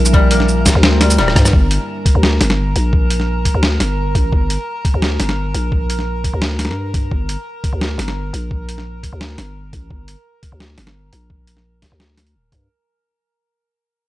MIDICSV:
0, 0, Header, 1, 6, 480
1, 0, Start_track
1, 0, Tempo, 348837
1, 189, Time_signature, 4, 2, 24, 8
1, 19374, End_track
2, 0, Start_track
2, 0, Title_t, "Synth drone"
2, 0, Program_c, 0, 95
2, 0, Note_on_c, 0, 70, 82
2, 2100, Note_off_c, 0, 70, 0
2, 2117, Note_on_c, 0, 70, 83
2, 17483, Note_off_c, 0, 70, 0
2, 19374, End_track
3, 0, Start_track
3, 0, Title_t, "Ambient pad"
3, 0, Program_c, 1, 92
3, 0, Note_on_c, 1, 55, 80
3, 0, Note_on_c, 1, 62, 94
3, 0, Note_on_c, 1, 70, 95
3, 0, Note_on_c, 1, 76, 79
3, 2103, Note_off_c, 1, 70, 0
3, 2106, Note_off_c, 1, 76, 0
3, 2109, Note_off_c, 1, 62, 0
3, 2111, Note_off_c, 1, 55, 0
3, 19374, End_track
4, 0, Start_track
4, 0, Title_t, "Koto"
4, 0, Program_c, 2, 107
4, 0, Note_on_c, 2, 55, 109
4, 0, Note_on_c, 2, 58, 78
4, 0, Note_on_c, 2, 60, 84
4, 0, Note_on_c, 2, 62, 76
4, 172, Note_off_c, 2, 55, 0
4, 189, Note_on_c, 2, 55, 99
4, 426, Note_off_c, 2, 58, 0
4, 432, Note_on_c, 2, 58, 76
4, 1144, Note_off_c, 2, 60, 0
4, 1149, Note_on_c, 2, 60, 85
4, 1371, Note_off_c, 2, 55, 0
4, 1387, Note_on_c, 2, 55, 74
4, 1613, Note_off_c, 2, 55, 0
4, 1629, Note_on_c, 2, 55, 101
4, 2085, Note_off_c, 2, 62, 0
4, 2177, Note_off_c, 2, 55, 0
4, 4266, Note_off_c, 2, 58, 0
4, 4727, Note_off_c, 2, 60, 0
4, 19374, End_track
5, 0, Start_track
5, 0, Title_t, "808-style bass"
5, 0, Program_c, 3, 38
5, 0, Note_on_c, 3, 34, 81
5, 1018, Note_off_c, 3, 34, 0
5, 1034, Note_on_c, 3, 38, 106
5, 1627, Note_on_c, 3, 26, 95
5, 1647, Note_off_c, 3, 38, 0
5, 1849, Note_off_c, 3, 26, 0
5, 1868, Note_on_c, 3, 43, 89
5, 2090, Note_off_c, 3, 43, 0
5, 2109, Note_on_c, 3, 31, 92
5, 2459, Note_off_c, 3, 31, 0
5, 2959, Note_on_c, 3, 38, 97
5, 3296, Note_off_c, 3, 38, 0
5, 3314, Note_on_c, 3, 31, 99
5, 3776, Note_off_c, 3, 31, 0
5, 3794, Note_on_c, 3, 34, 84
5, 4861, Note_off_c, 3, 34, 0
5, 4877, Note_on_c, 3, 38, 102
5, 5215, Note_off_c, 3, 38, 0
5, 5230, Note_on_c, 3, 31, 91
5, 5694, Note_off_c, 3, 31, 0
5, 5709, Note_on_c, 3, 33, 90
5, 5930, Note_off_c, 3, 33, 0
5, 5952, Note_on_c, 3, 31, 95
5, 6301, Note_off_c, 3, 31, 0
5, 6798, Note_on_c, 3, 38, 106
5, 7135, Note_off_c, 3, 38, 0
5, 7150, Note_on_c, 3, 31, 96
5, 7614, Note_off_c, 3, 31, 0
5, 7627, Note_on_c, 3, 34, 82
5, 8698, Note_off_c, 3, 34, 0
5, 8716, Note_on_c, 3, 38, 100
5, 9195, Note_on_c, 3, 43, 87
5, 9216, Note_off_c, 3, 38, 0
5, 9774, Note_off_c, 3, 43, 0
5, 9790, Note_on_c, 3, 31, 94
5, 10139, Note_off_c, 3, 31, 0
5, 10632, Note_on_c, 3, 38, 100
5, 10972, Note_off_c, 3, 38, 0
5, 10982, Note_on_c, 3, 31, 99
5, 11451, Note_off_c, 3, 31, 0
5, 11467, Note_on_c, 3, 34, 82
5, 12538, Note_off_c, 3, 34, 0
5, 12557, Note_on_c, 3, 38, 99
5, 12895, Note_off_c, 3, 38, 0
5, 12912, Note_on_c, 3, 31, 92
5, 13376, Note_off_c, 3, 31, 0
5, 13390, Note_on_c, 3, 33, 89
5, 13611, Note_off_c, 3, 33, 0
5, 13629, Note_on_c, 3, 31, 93
5, 13979, Note_off_c, 3, 31, 0
5, 14478, Note_on_c, 3, 38, 100
5, 14815, Note_off_c, 3, 38, 0
5, 14828, Note_on_c, 3, 31, 94
5, 15294, Note_off_c, 3, 31, 0
5, 15310, Note_on_c, 3, 34, 81
5, 16380, Note_off_c, 3, 34, 0
5, 16399, Note_on_c, 3, 38, 98
5, 16992, Note_on_c, 3, 26, 89
5, 17012, Note_off_c, 3, 38, 0
5, 17212, Note_off_c, 3, 26, 0
5, 17229, Note_on_c, 3, 43, 80
5, 17451, Note_off_c, 3, 43, 0
5, 19374, End_track
6, 0, Start_track
6, 0, Title_t, "Drums"
6, 71, Note_on_c, 9, 82, 69
6, 184, Note_on_c, 9, 36, 113
6, 208, Note_off_c, 9, 82, 0
6, 322, Note_off_c, 9, 36, 0
6, 423, Note_on_c, 9, 42, 80
6, 552, Note_on_c, 9, 40, 42
6, 561, Note_off_c, 9, 42, 0
6, 666, Note_on_c, 9, 82, 41
6, 690, Note_off_c, 9, 40, 0
6, 804, Note_off_c, 9, 82, 0
6, 905, Note_on_c, 9, 36, 60
6, 905, Note_on_c, 9, 38, 60
6, 905, Note_on_c, 9, 42, 67
6, 905, Note_on_c, 9, 82, 68
6, 1042, Note_off_c, 9, 36, 0
6, 1043, Note_off_c, 9, 38, 0
6, 1043, Note_off_c, 9, 42, 0
6, 1043, Note_off_c, 9, 82, 0
6, 1145, Note_on_c, 9, 38, 118
6, 1282, Note_off_c, 9, 38, 0
6, 1386, Note_on_c, 9, 40, 88
6, 1386, Note_on_c, 9, 42, 83
6, 1516, Note_off_c, 9, 42, 0
6, 1516, Note_on_c, 9, 42, 39
6, 1516, Note_on_c, 9, 82, 76
6, 1524, Note_off_c, 9, 40, 0
6, 1631, Note_on_c, 9, 37, 58
6, 1654, Note_off_c, 9, 42, 0
6, 1654, Note_off_c, 9, 82, 0
6, 1761, Note_off_c, 9, 37, 0
6, 1761, Note_on_c, 9, 37, 63
6, 1867, Note_on_c, 9, 36, 104
6, 1874, Note_off_c, 9, 37, 0
6, 1874, Note_on_c, 9, 37, 87
6, 1874, Note_on_c, 9, 42, 66
6, 2000, Note_off_c, 9, 37, 0
6, 2000, Note_on_c, 9, 37, 81
6, 2000, Note_on_c, 9, 82, 66
6, 2005, Note_off_c, 9, 36, 0
6, 2011, Note_off_c, 9, 42, 0
6, 2109, Note_on_c, 9, 36, 120
6, 2138, Note_off_c, 9, 37, 0
6, 2138, Note_off_c, 9, 82, 0
6, 2247, Note_off_c, 9, 36, 0
6, 2350, Note_on_c, 9, 42, 73
6, 2488, Note_off_c, 9, 42, 0
6, 2829, Note_on_c, 9, 36, 102
6, 2833, Note_on_c, 9, 42, 69
6, 2967, Note_off_c, 9, 36, 0
6, 2971, Note_off_c, 9, 42, 0
6, 3071, Note_on_c, 9, 38, 114
6, 3209, Note_off_c, 9, 38, 0
6, 3311, Note_on_c, 9, 40, 81
6, 3311, Note_on_c, 9, 42, 79
6, 3440, Note_off_c, 9, 40, 0
6, 3440, Note_on_c, 9, 40, 84
6, 3449, Note_off_c, 9, 42, 0
6, 3578, Note_off_c, 9, 40, 0
6, 3793, Note_on_c, 9, 42, 62
6, 3931, Note_off_c, 9, 42, 0
6, 4031, Note_on_c, 9, 36, 113
6, 4168, Note_off_c, 9, 36, 0
6, 4272, Note_on_c, 9, 42, 74
6, 4399, Note_on_c, 9, 40, 35
6, 4409, Note_off_c, 9, 42, 0
6, 4537, Note_off_c, 9, 40, 0
6, 4751, Note_on_c, 9, 36, 66
6, 4753, Note_on_c, 9, 42, 65
6, 4888, Note_off_c, 9, 36, 0
6, 4890, Note_off_c, 9, 42, 0
6, 4992, Note_on_c, 9, 38, 117
6, 5130, Note_off_c, 9, 38, 0
6, 5232, Note_on_c, 9, 40, 80
6, 5232, Note_on_c, 9, 42, 84
6, 5370, Note_off_c, 9, 40, 0
6, 5370, Note_off_c, 9, 42, 0
6, 5711, Note_on_c, 9, 36, 109
6, 5714, Note_on_c, 9, 42, 65
6, 5848, Note_off_c, 9, 36, 0
6, 5851, Note_off_c, 9, 42, 0
6, 5951, Note_on_c, 9, 36, 119
6, 6089, Note_off_c, 9, 36, 0
6, 6193, Note_on_c, 9, 42, 76
6, 6331, Note_off_c, 9, 42, 0
6, 6671, Note_on_c, 9, 36, 110
6, 6674, Note_on_c, 9, 42, 65
6, 6808, Note_off_c, 9, 36, 0
6, 6812, Note_off_c, 9, 42, 0
6, 6912, Note_on_c, 9, 38, 124
6, 7049, Note_off_c, 9, 38, 0
6, 7150, Note_on_c, 9, 40, 80
6, 7150, Note_on_c, 9, 42, 79
6, 7278, Note_off_c, 9, 40, 0
6, 7278, Note_on_c, 9, 40, 79
6, 7288, Note_off_c, 9, 42, 0
6, 7415, Note_off_c, 9, 40, 0
6, 7630, Note_on_c, 9, 42, 65
6, 7768, Note_off_c, 9, 42, 0
6, 7870, Note_on_c, 9, 36, 116
6, 8007, Note_off_c, 9, 36, 0
6, 8114, Note_on_c, 9, 42, 68
6, 8239, Note_on_c, 9, 40, 35
6, 8252, Note_off_c, 9, 42, 0
6, 8376, Note_off_c, 9, 40, 0
6, 8590, Note_on_c, 9, 36, 59
6, 8593, Note_on_c, 9, 42, 62
6, 8727, Note_off_c, 9, 36, 0
6, 8731, Note_off_c, 9, 42, 0
6, 8830, Note_on_c, 9, 38, 121
6, 8967, Note_off_c, 9, 38, 0
6, 9068, Note_on_c, 9, 40, 66
6, 9068, Note_on_c, 9, 42, 73
6, 9148, Note_off_c, 9, 40, 0
6, 9148, Note_on_c, 9, 40, 56
6, 9206, Note_off_c, 9, 42, 0
6, 9231, Note_off_c, 9, 40, 0
6, 9231, Note_on_c, 9, 40, 48
6, 9369, Note_off_c, 9, 40, 0
6, 9550, Note_on_c, 9, 36, 108
6, 9552, Note_on_c, 9, 42, 60
6, 9687, Note_off_c, 9, 36, 0
6, 9689, Note_off_c, 9, 42, 0
6, 9790, Note_on_c, 9, 36, 114
6, 9927, Note_off_c, 9, 36, 0
6, 10031, Note_on_c, 9, 42, 70
6, 10169, Note_off_c, 9, 42, 0
6, 10509, Note_on_c, 9, 36, 104
6, 10512, Note_on_c, 9, 42, 59
6, 10647, Note_off_c, 9, 36, 0
6, 10650, Note_off_c, 9, 42, 0
6, 10751, Note_on_c, 9, 38, 114
6, 10889, Note_off_c, 9, 38, 0
6, 10995, Note_on_c, 9, 40, 74
6, 10995, Note_on_c, 9, 42, 74
6, 11118, Note_off_c, 9, 40, 0
6, 11118, Note_on_c, 9, 40, 74
6, 11133, Note_off_c, 9, 42, 0
6, 11256, Note_off_c, 9, 40, 0
6, 11474, Note_on_c, 9, 42, 59
6, 11611, Note_off_c, 9, 42, 0
6, 11709, Note_on_c, 9, 36, 104
6, 11847, Note_off_c, 9, 36, 0
6, 11952, Note_on_c, 9, 42, 68
6, 12082, Note_on_c, 9, 40, 36
6, 12090, Note_off_c, 9, 42, 0
6, 12220, Note_off_c, 9, 40, 0
6, 12429, Note_on_c, 9, 36, 55
6, 12433, Note_on_c, 9, 42, 57
6, 12567, Note_off_c, 9, 36, 0
6, 12571, Note_off_c, 9, 42, 0
6, 12671, Note_on_c, 9, 38, 105
6, 12809, Note_off_c, 9, 38, 0
6, 12909, Note_on_c, 9, 40, 76
6, 12909, Note_on_c, 9, 42, 70
6, 13046, Note_off_c, 9, 40, 0
6, 13046, Note_off_c, 9, 42, 0
6, 13389, Note_on_c, 9, 36, 98
6, 13391, Note_on_c, 9, 42, 57
6, 13527, Note_off_c, 9, 36, 0
6, 13528, Note_off_c, 9, 42, 0
6, 13629, Note_on_c, 9, 36, 105
6, 13767, Note_off_c, 9, 36, 0
6, 13870, Note_on_c, 9, 42, 70
6, 14007, Note_off_c, 9, 42, 0
6, 14349, Note_on_c, 9, 36, 94
6, 14350, Note_on_c, 9, 42, 61
6, 14487, Note_off_c, 9, 36, 0
6, 14487, Note_off_c, 9, 42, 0
6, 14590, Note_on_c, 9, 38, 109
6, 14728, Note_off_c, 9, 38, 0
6, 14829, Note_on_c, 9, 40, 78
6, 14829, Note_on_c, 9, 42, 74
6, 14957, Note_off_c, 9, 40, 0
6, 14957, Note_on_c, 9, 40, 80
6, 14966, Note_off_c, 9, 42, 0
6, 15094, Note_off_c, 9, 40, 0
6, 15310, Note_on_c, 9, 42, 60
6, 15447, Note_off_c, 9, 42, 0
6, 15549, Note_on_c, 9, 36, 104
6, 15686, Note_off_c, 9, 36, 0
6, 15789, Note_on_c, 9, 42, 69
6, 15917, Note_on_c, 9, 40, 35
6, 15926, Note_off_c, 9, 42, 0
6, 16054, Note_off_c, 9, 40, 0
6, 16268, Note_on_c, 9, 38, 52
6, 16268, Note_on_c, 9, 42, 63
6, 16269, Note_on_c, 9, 36, 55
6, 16406, Note_off_c, 9, 36, 0
6, 16406, Note_off_c, 9, 38, 0
6, 16406, Note_off_c, 9, 42, 0
6, 16511, Note_on_c, 9, 38, 104
6, 16649, Note_off_c, 9, 38, 0
6, 16753, Note_on_c, 9, 40, 79
6, 16753, Note_on_c, 9, 42, 76
6, 16878, Note_off_c, 9, 42, 0
6, 16878, Note_on_c, 9, 42, 37
6, 16890, Note_off_c, 9, 40, 0
6, 17016, Note_off_c, 9, 42, 0
6, 17229, Note_on_c, 9, 36, 100
6, 17230, Note_on_c, 9, 42, 58
6, 17367, Note_off_c, 9, 36, 0
6, 17368, Note_off_c, 9, 42, 0
6, 19374, End_track
0, 0, End_of_file